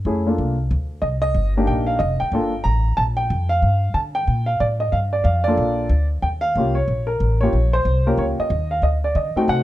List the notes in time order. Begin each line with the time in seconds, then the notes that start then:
0.05 F2 A3 C#4 E4 G#4
0.27 A#3 D4 F4 A4
0.38 C2
0.71 D2
1.02 C2 D#5
1.22 D#5
1.34 G1
1.57 A#3 D4 D#4 G4
1.67 A#1 G5
1.87 F5
1.99 F1 D#5
2.20 G5, muted upright bass stroke
2.32 G1 A#3 D4 F4 A4
2.64 A1 A#5
2.97 A#1 A5
3.17 G5
3.30 F2
3.49 F5
3.62 G2
3.94 D3 A5
4.15 G5
4.27 A#2
4.46 F5
4.60 A2 D5
4.80 D#5
4.92 G2 F5
5.13 D5
5.24 F2 F5
5.44 A#3 D5
5.48 D4 F4 A4
5.57 A#1
5.89 D2
6.22 D#2 G5
6.41 F5
6.56 C2 A#3 C#4 F4 G4
6.75 C#5
6.88 A#1
7.07 A#4
7.20 A1
7.41 A#3 C#4 F4 G4 C#5
7.53 A#1
7.73 C5
7.85 C2
8.06 A#3 C#4 F4 G4 A#4
8.17 C#2 C#5
8.39 D#5, muted upright bass stroke
8.50 D#2
8.71 F5
8.82 D2 D#5
9.04 D5
9.15 D3 D#5
9.36 A3 C4 D#4 F#4 G5, muted upright bass stroke
9.48 C3 F#5